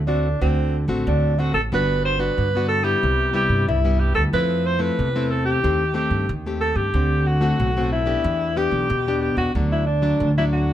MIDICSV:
0, 0, Header, 1, 4, 480
1, 0, Start_track
1, 0, Tempo, 652174
1, 1270, Time_signature, 4, 2, 24, 8
1, 7897, End_track
2, 0, Start_track
2, 0, Title_t, "Alto saxophone"
2, 0, Program_c, 0, 65
2, 53, Note_on_c, 0, 62, 87
2, 284, Note_off_c, 0, 62, 0
2, 307, Note_on_c, 0, 60, 91
2, 570, Note_off_c, 0, 60, 0
2, 792, Note_on_c, 0, 62, 87
2, 1024, Note_on_c, 0, 66, 87
2, 1035, Note_off_c, 0, 62, 0
2, 1128, Note_off_c, 0, 66, 0
2, 1133, Note_on_c, 0, 69, 89
2, 1191, Note_off_c, 0, 69, 0
2, 1281, Note_on_c, 0, 71, 111
2, 1499, Note_off_c, 0, 71, 0
2, 1510, Note_on_c, 0, 72, 99
2, 1616, Note_on_c, 0, 71, 101
2, 1627, Note_off_c, 0, 72, 0
2, 1971, Note_off_c, 0, 71, 0
2, 1975, Note_on_c, 0, 69, 101
2, 2092, Note_on_c, 0, 67, 100
2, 2103, Note_off_c, 0, 69, 0
2, 2461, Note_off_c, 0, 67, 0
2, 2468, Note_on_c, 0, 67, 101
2, 2693, Note_off_c, 0, 67, 0
2, 2708, Note_on_c, 0, 64, 91
2, 2940, Note_on_c, 0, 67, 87
2, 2951, Note_off_c, 0, 64, 0
2, 3050, Note_off_c, 0, 67, 0
2, 3054, Note_on_c, 0, 69, 92
2, 3112, Note_off_c, 0, 69, 0
2, 3191, Note_on_c, 0, 71, 105
2, 3429, Note_on_c, 0, 72, 100
2, 3440, Note_off_c, 0, 71, 0
2, 3540, Note_on_c, 0, 71, 97
2, 3551, Note_off_c, 0, 72, 0
2, 3904, Note_on_c, 0, 69, 94
2, 3915, Note_off_c, 0, 71, 0
2, 4009, Note_off_c, 0, 69, 0
2, 4014, Note_on_c, 0, 67, 101
2, 4357, Note_off_c, 0, 67, 0
2, 4382, Note_on_c, 0, 67, 91
2, 4648, Note_off_c, 0, 67, 0
2, 4864, Note_on_c, 0, 69, 94
2, 4979, Note_on_c, 0, 67, 95
2, 4990, Note_off_c, 0, 69, 0
2, 5349, Note_on_c, 0, 66, 98
2, 5360, Note_off_c, 0, 67, 0
2, 5826, Note_off_c, 0, 66, 0
2, 5831, Note_on_c, 0, 64, 96
2, 6309, Note_on_c, 0, 67, 100
2, 6320, Note_off_c, 0, 64, 0
2, 6781, Note_off_c, 0, 67, 0
2, 6786, Note_on_c, 0, 67, 82
2, 6896, Note_off_c, 0, 67, 0
2, 6901, Note_on_c, 0, 66, 88
2, 7011, Note_off_c, 0, 66, 0
2, 7156, Note_on_c, 0, 64, 83
2, 7258, Note_off_c, 0, 64, 0
2, 7262, Note_on_c, 0, 62, 92
2, 7601, Note_off_c, 0, 62, 0
2, 7637, Note_on_c, 0, 64, 81
2, 7690, Note_off_c, 0, 64, 0
2, 7751, Note_on_c, 0, 66, 85
2, 7897, Note_off_c, 0, 66, 0
2, 7897, End_track
3, 0, Start_track
3, 0, Title_t, "Nylon-string guitar"
3, 0, Program_c, 1, 24
3, 0, Note_on_c, 1, 45, 60
3, 52, Note_on_c, 1, 57, 58
3, 56, Note_on_c, 1, 60, 64
3, 61, Note_on_c, 1, 66, 67
3, 202, Note_off_c, 1, 57, 0
3, 204, Note_off_c, 1, 60, 0
3, 206, Note_off_c, 1, 66, 0
3, 282, Note_off_c, 1, 45, 0
3, 300, Note_on_c, 1, 50, 53
3, 305, Note_on_c, 1, 57, 51
3, 305, Note_on_c, 1, 60, 57
3, 308, Note_on_c, 1, 66, 59
3, 628, Note_off_c, 1, 57, 0
3, 629, Note_off_c, 1, 60, 0
3, 630, Note_off_c, 1, 66, 0
3, 651, Note_on_c, 1, 57, 63
3, 655, Note_on_c, 1, 66, 72
3, 657, Note_on_c, 1, 60, 65
3, 762, Note_off_c, 1, 50, 0
3, 791, Note_on_c, 1, 45, 51
3, 982, Note_off_c, 1, 57, 0
3, 983, Note_off_c, 1, 60, 0
3, 984, Note_off_c, 1, 66, 0
3, 1021, Note_on_c, 1, 57, 59
3, 1027, Note_on_c, 1, 60, 58
3, 1031, Note_on_c, 1, 66, 59
3, 1166, Note_off_c, 1, 57, 0
3, 1170, Note_off_c, 1, 60, 0
3, 1171, Note_off_c, 1, 66, 0
3, 1246, Note_off_c, 1, 45, 0
3, 1271, Note_on_c, 1, 55, 58
3, 1271, Note_on_c, 1, 59, 61
3, 1273, Note_on_c, 1, 62, 56
3, 1278, Note_on_c, 1, 66, 67
3, 1592, Note_off_c, 1, 59, 0
3, 1593, Note_off_c, 1, 62, 0
3, 1596, Note_off_c, 1, 66, 0
3, 1611, Note_on_c, 1, 59, 63
3, 1615, Note_on_c, 1, 62, 61
3, 1618, Note_on_c, 1, 66, 63
3, 1727, Note_off_c, 1, 55, 0
3, 1749, Note_on_c, 1, 50, 53
3, 1823, Note_off_c, 1, 59, 0
3, 1825, Note_off_c, 1, 62, 0
3, 1826, Note_off_c, 1, 66, 0
3, 1878, Note_on_c, 1, 59, 63
3, 1885, Note_on_c, 1, 62, 61
3, 1889, Note_on_c, 1, 66, 67
3, 2076, Note_off_c, 1, 59, 0
3, 2080, Note_off_c, 1, 62, 0
3, 2080, Note_off_c, 1, 66, 0
3, 2088, Note_on_c, 1, 55, 68
3, 2091, Note_on_c, 1, 59, 57
3, 2094, Note_on_c, 1, 64, 71
3, 2206, Note_off_c, 1, 50, 0
3, 2230, Note_on_c, 1, 48, 55
3, 2421, Note_off_c, 1, 55, 0
3, 2422, Note_off_c, 1, 59, 0
3, 2424, Note_off_c, 1, 64, 0
3, 2454, Note_on_c, 1, 55, 65
3, 2457, Note_on_c, 1, 59, 56
3, 2461, Note_on_c, 1, 64, 65
3, 2687, Note_off_c, 1, 48, 0
3, 2704, Note_on_c, 1, 43, 53
3, 2784, Note_off_c, 1, 55, 0
3, 2786, Note_off_c, 1, 59, 0
3, 2787, Note_off_c, 1, 64, 0
3, 2832, Note_on_c, 1, 55, 60
3, 2836, Note_on_c, 1, 59, 55
3, 2838, Note_on_c, 1, 64, 63
3, 3154, Note_off_c, 1, 55, 0
3, 3154, Note_off_c, 1, 59, 0
3, 3156, Note_off_c, 1, 64, 0
3, 3164, Note_off_c, 1, 43, 0
3, 3184, Note_on_c, 1, 53, 57
3, 3187, Note_on_c, 1, 57, 55
3, 3190, Note_on_c, 1, 60, 54
3, 3194, Note_on_c, 1, 64, 67
3, 3510, Note_off_c, 1, 57, 0
3, 3513, Note_off_c, 1, 60, 0
3, 3514, Note_off_c, 1, 64, 0
3, 3525, Note_on_c, 1, 57, 63
3, 3530, Note_on_c, 1, 60, 66
3, 3531, Note_on_c, 1, 64, 67
3, 3644, Note_off_c, 1, 53, 0
3, 3668, Note_on_c, 1, 48, 58
3, 3740, Note_off_c, 1, 57, 0
3, 3742, Note_off_c, 1, 60, 0
3, 3742, Note_off_c, 1, 64, 0
3, 3795, Note_on_c, 1, 60, 65
3, 3798, Note_on_c, 1, 57, 65
3, 3802, Note_on_c, 1, 64, 68
3, 4115, Note_off_c, 1, 60, 0
3, 4117, Note_off_c, 1, 57, 0
3, 4117, Note_off_c, 1, 64, 0
3, 4126, Note_off_c, 1, 48, 0
3, 4146, Note_on_c, 1, 51, 54
3, 4148, Note_on_c, 1, 57, 55
3, 4150, Note_on_c, 1, 60, 58
3, 4153, Note_on_c, 1, 67, 61
3, 4290, Note_off_c, 1, 57, 0
3, 4292, Note_off_c, 1, 60, 0
3, 4293, Note_off_c, 1, 67, 0
3, 4372, Note_on_c, 1, 57, 64
3, 4376, Note_on_c, 1, 60, 60
3, 4378, Note_on_c, 1, 67, 64
3, 4605, Note_off_c, 1, 51, 0
3, 4607, Note_off_c, 1, 57, 0
3, 4609, Note_off_c, 1, 60, 0
3, 4609, Note_off_c, 1, 67, 0
3, 4758, Note_on_c, 1, 57, 53
3, 4761, Note_on_c, 1, 60, 52
3, 4764, Note_on_c, 1, 67, 62
3, 5077, Note_off_c, 1, 57, 0
3, 5077, Note_off_c, 1, 60, 0
3, 5079, Note_off_c, 1, 67, 0
3, 5112, Note_on_c, 1, 50, 57
3, 5117, Note_on_c, 1, 57, 58
3, 5119, Note_on_c, 1, 60, 57
3, 5434, Note_off_c, 1, 57, 0
3, 5437, Note_off_c, 1, 60, 0
3, 5452, Note_on_c, 1, 57, 61
3, 5458, Note_on_c, 1, 60, 59
3, 5461, Note_on_c, 1, 66, 69
3, 5568, Note_off_c, 1, 50, 0
3, 5597, Note_on_c, 1, 45, 56
3, 5664, Note_off_c, 1, 57, 0
3, 5665, Note_off_c, 1, 60, 0
3, 5667, Note_off_c, 1, 66, 0
3, 5718, Note_on_c, 1, 57, 69
3, 5723, Note_on_c, 1, 60, 68
3, 5724, Note_on_c, 1, 66, 66
3, 5916, Note_off_c, 1, 57, 0
3, 5918, Note_off_c, 1, 60, 0
3, 5919, Note_off_c, 1, 66, 0
3, 5931, Note_on_c, 1, 59, 60
3, 5935, Note_on_c, 1, 62, 55
3, 5939, Note_on_c, 1, 67, 71
3, 6050, Note_off_c, 1, 45, 0
3, 6066, Note_on_c, 1, 52, 59
3, 6264, Note_off_c, 1, 59, 0
3, 6264, Note_off_c, 1, 62, 0
3, 6264, Note_off_c, 1, 67, 0
3, 6304, Note_on_c, 1, 59, 61
3, 6307, Note_on_c, 1, 62, 59
3, 6309, Note_on_c, 1, 67, 71
3, 6525, Note_off_c, 1, 52, 0
3, 6533, Note_off_c, 1, 59, 0
3, 6534, Note_off_c, 1, 62, 0
3, 6534, Note_off_c, 1, 67, 0
3, 6551, Note_on_c, 1, 47, 53
3, 6679, Note_on_c, 1, 59, 58
3, 6683, Note_on_c, 1, 62, 59
3, 6684, Note_on_c, 1, 67, 57
3, 6997, Note_off_c, 1, 59, 0
3, 6999, Note_off_c, 1, 62, 0
3, 6999, Note_off_c, 1, 67, 0
3, 7007, Note_off_c, 1, 47, 0
3, 7029, Note_on_c, 1, 50, 57
3, 7032, Note_on_c, 1, 54, 56
3, 7034, Note_on_c, 1, 57, 59
3, 7038, Note_on_c, 1, 62, 65
3, 7257, Note_off_c, 1, 54, 0
3, 7257, Note_off_c, 1, 57, 0
3, 7258, Note_off_c, 1, 62, 0
3, 7375, Note_on_c, 1, 54, 60
3, 7380, Note_on_c, 1, 57, 60
3, 7381, Note_on_c, 1, 62, 71
3, 7486, Note_off_c, 1, 50, 0
3, 7524, Note_on_c, 1, 45, 58
3, 7585, Note_off_c, 1, 54, 0
3, 7586, Note_off_c, 1, 57, 0
3, 7588, Note_off_c, 1, 62, 0
3, 7640, Note_on_c, 1, 54, 65
3, 7645, Note_on_c, 1, 57, 66
3, 7646, Note_on_c, 1, 62, 66
3, 7897, Note_off_c, 1, 45, 0
3, 7897, Note_off_c, 1, 54, 0
3, 7897, Note_off_c, 1, 57, 0
3, 7897, Note_off_c, 1, 62, 0
3, 7897, End_track
4, 0, Start_track
4, 0, Title_t, "Upright bass"
4, 0, Program_c, 2, 32
4, 0, Note_on_c, 2, 38, 95
4, 236, Note_off_c, 2, 38, 0
4, 305, Note_on_c, 2, 38, 100
4, 613, Note_off_c, 2, 38, 0
4, 646, Note_on_c, 2, 33, 83
4, 758, Note_off_c, 2, 33, 0
4, 786, Note_on_c, 2, 38, 100
4, 1094, Note_off_c, 2, 38, 0
4, 1129, Note_on_c, 2, 33, 78
4, 1240, Note_off_c, 2, 33, 0
4, 1265, Note_on_c, 2, 31, 92
4, 1675, Note_off_c, 2, 31, 0
4, 1750, Note_on_c, 2, 43, 89
4, 2158, Note_off_c, 2, 43, 0
4, 2231, Note_on_c, 2, 36, 92
4, 2537, Note_off_c, 2, 36, 0
4, 2570, Note_on_c, 2, 43, 81
4, 2681, Note_off_c, 2, 43, 0
4, 2712, Note_on_c, 2, 36, 99
4, 3018, Note_off_c, 2, 36, 0
4, 3050, Note_on_c, 2, 38, 81
4, 3161, Note_off_c, 2, 38, 0
4, 3189, Note_on_c, 2, 41, 98
4, 3598, Note_off_c, 2, 41, 0
4, 3672, Note_on_c, 2, 40, 91
4, 4080, Note_off_c, 2, 40, 0
4, 4152, Note_on_c, 2, 39, 94
4, 4458, Note_off_c, 2, 39, 0
4, 4493, Note_on_c, 2, 43, 84
4, 4603, Note_off_c, 2, 43, 0
4, 4630, Note_on_c, 2, 39, 105
4, 4937, Note_off_c, 2, 39, 0
4, 4971, Note_on_c, 2, 43, 77
4, 5082, Note_off_c, 2, 43, 0
4, 5106, Note_on_c, 2, 38, 102
4, 5516, Note_off_c, 2, 38, 0
4, 5591, Note_on_c, 2, 35, 94
4, 5999, Note_off_c, 2, 35, 0
4, 6067, Note_on_c, 2, 40, 104
4, 6375, Note_off_c, 2, 40, 0
4, 6414, Note_on_c, 2, 35, 82
4, 6523, Note_off_c, 2, 35, 0
4, 6549, Note_on_c, 2, 40, 101
4, 6856, Note_off_c, 2, 40, 0
4, 6894, Note_on_c, 2, 40, 83
4, 7003, Note_off_c, 2, 40, 0
4, 7029, Note_on_c, 2, 38, 93
4, 7438, Note_off_c, 2, 38, 0
4, 7508, Note_on_c, 2, 38, 92
4, 7897, Note_off_c, 2, 38, 0
4, 7897, End_track
0, 0, End_of_file